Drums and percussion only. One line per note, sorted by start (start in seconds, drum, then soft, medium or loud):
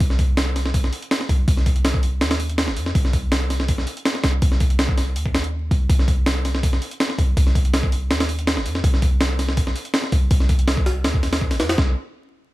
0.00 kick loud
0.00 open hi-hat medium
0.10 snare soft
0.19 kick medium
0.19 open hi-hat medium
0.37 snare loud
0.37 open hi-hat medium
0.56 snare soft
0.56 open hi-hat medium
0.66 snare medium
0.74 kick loud
0.74 open hi-hat medium
0.84 snare soft
0.93 open hi-hat medium
1.03 closed hi-hat soft
1.11 snare loud
1.11 open hi-hat medium
1.21 snare soft
1.29 kick medium
1.29 open hi-hat medium
1.48 kick loud
1.48 open hi-hat medium
1.57 snare soft
1.66 kick medium
1.66 open hi-hat medium
1.76 closed hi-hat soft
1.85 snare loud
1.85 open hi-hat medium
1.94 kick medium
2.03 open hi-hat medium
2.21 snare loud
2.21 open hi-hat medium
2.31 snare loud
2.31 open hi-hat medium
2.40 open hi-hat medium
2.50 closed hi-hat soft
2.58 snare loud
2.58 open hi-hat medium
2.68 snare medium
2.77 open hi-hat medium
2.86 snare medium
2.95 kick loud
2.95 open hi-hat medium
3.05 snare soft
3.13 kick medium
3.13 open hi-hat medium
3.32 snare loud
3.32 open hi-hat medium
3.50 snare soft
3.50 open hi-hat medium
3.60 snare medium
3.68 kick loud
3.68 open hi-hat medium
3.78 snare soft
3.87 open hi-hat medium
3.97 closed hi-hat soft
4.05 snare loud
4.05 open hi-hat medium
4.15 snare soft
4.24 snare loud
4.24 open hi-hat medium
4.42 kick loud
4.42 open hi-hat medium
4.52 snare soft
4.60 kick medium
4.60 open hi-hat medium
4.70 closed hi-hat soft
4.79 snare loud
4.79 open hi-hat medium
4.89 kick medium
4.98 snare soft
4.98 open hi-hat medium
5.16 open hi-hat medium
5.26 kick medium
5.34 snare loud
5.34 open hi-hat medium
5.44 closed hi-hat soft
5.71 kick medium
5.71 open hi-hat medium
5.90 kick loud
5.90 open hi-hat medium
5.99 snare soft
6.08 kick medium
6.08 open hi-hat medium
6.26 snare loud
6.26 open hi-hat medium
6.45 snare soft
6.45 open hi-hat medium
6.55 snare medium
6.63 kick loud
6.63 open hi-hat medium
6.73 snare soft
6.82 open hi-hat medium
6.91 closed hi-hat soft
7.00 snare loud
7.00 open hi-hat medium
7.10 snare soft
7.19 kick medium
7.19 open hi-hat medium
7.37 kick loud
7.37 open hi-hat medium
7.47 snare soft
7.55 kick loud
7.55 open hi-hat medium
7.65 closed hi-hat soft
7.74 snare loud
7.74 open hi-hat medium
7.83 kick medium
7.92 open hi-hat medium
8.11 snare loud
8.11 open hi-hat medium
8.20 snare loud
8.20 open hi-hat medium
8.29 open hi-hat medium
8.39 closed hi-hat soft
8.47 snare loud
8.47 open hi-hat medium
8.57 snare medium
8.66 open hi-hat medium
8.75 snare medium
8.84 kick loud
8.84 open hi-hat medium
8.94 snare soft
9.02 kick medium
9.02 open hi-hat medium
9.21 snare loud
9.21 open hi-hat medium
9.39 snare soft
9.39 open hi-hat medium
9.49 snare medium
9.57 kick loud
9.57 open hi-hat medium
9.67 snare soft
9.76 open hi-hat medium
9.85 closed hi-hat soft
9.94 snare loud
9.94 open hi-hat medium
10.04 snare soft
10.12 kick medium
10.12 open hi-hat medium
10.31 kick loud
10.31 open hi-hat medium
10.40 snare soft
10.49 kick medium
10.49 open hi-hat medium
10.59 closed hi-hat soft
10.68 snare loud
10.68 open hi-hat medium
10.77 kick medium
10.86 snare soft
10.86 open hi-hat medium
11.04 snare loud
11.04 open hi-hat medium
11.14 kick medium
11.23 snare soft
11.23 open hi-hat medium
11.33 snare loud
11.33 open hi-hat medium
11.41 kick medium
11.51 snare soft
11.51 open hi-hat medium
11.60 snare loud
11.60 open hi-hat medium
11.69 snare loud
11.69 open hi-hat medium
11.78 kick loud
11.78 snare loud